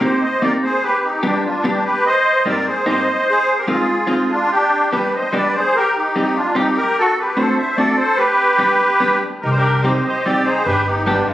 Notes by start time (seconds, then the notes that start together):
0.01 A#3 C4 D#4 G4 C5
0.05 G4
0.21 C5 D#5
0.42 A#3 C4 D#4 G4 A#4 D5
0.63 G#4 C5
0.83 G4 B4
1.03 D#4 G4
1.23 G3 B3 D4 G4
1.45 D4 F4
1.64 G3 B3 D4 G4
1.85 G4 B4
2.05 C5 D#5
2.45 G2 A#3 C4 D#4 G4 A#4 D5
2.66 G#4 C5
2.86 G2 A#3 C4 D#4 G4 C5 D#5
3.27 G#4 C5
3.58 G4 A#4
3.67 G#3 C4 D#4 F4 G#4
4.07 G#3 C4 D#4 F4 G#4
4.30 D4 F4
4.52 D4 G4
4.93 G3 B3 D4 G4 B4
5.14 C5 D#5
5.33 G3 B3 D4 G4 B4 D5
5.55 G#4 C5
5.76 G4 A#4
5.96 D#4 G4
6.16 G3 C4 D#4 G4
6.36 D4 F4
6.55 G3 C4 D#4 G4
6.60 D#4
6.77 G4 A#4
6.99 F#4 A4
7.19 G4 B4
7.37 A3 C4 D4 F#4 A4 C5
7.58 C5 E5
7.76 A3 C4 D4 F#4 A4 D5
7.97 A4 C5
8.16 G4 B4
8.58 G3 B3 D4 G4
9.00 G3 B3 D4 G4
9.42 C2 D#4 G4 A#4
9.51 D#4 C5
9.56 D4 G4 A#4
9.81 G3 C4 D#4 G4 C5
9.85 D#4
10.05 G4 C5 D#5
10.24 G3 C4 D#4 G4 D5
10.44 D#4 G#4 C5
10.65 G1 D4 G4 B4
10.84 B3 D#4 G4
11.04 G3 B3 D4 G4
11.27 G#3 D4 F4